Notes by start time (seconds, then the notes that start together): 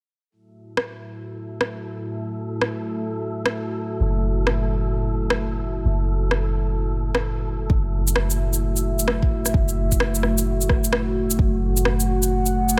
0.30 A3 F#4 A4 E5
0.77 cross-stick
1.61 cross-stick
2.62 cross-stick
3.46 cross-stick
4.00 F#1
4.47 cross-stick
5.30 cross-stick
5.85 F#1
6.31 cross-stick
7.15 cross-stick
7.70 F#1 A3 F#4 E5, kick
8.07 shaker
8.16 cross-stick
8.30 shaker
8.53 shaker
8.76 shaker
8.99 shaker
9.08 cross-stick
9.22 kick
9.46 cross-stick, shaker
9.54 F#1, kick
9.69 shaker
9.92 kick, shaker
10.00 cross-stick
10.15 shaker
10.23 cross-stick
10.38 shaker
10.61 shaker
10.69 kick, cross-stick
10.84 shaker
10.93 cross-stick
11.31 shaker
11.39 F#1 F#5, kick
11.77 shaker
11.85 cross-stick
12.00 shaker
12.23 shaker
12.46 shaker
12.69 shaker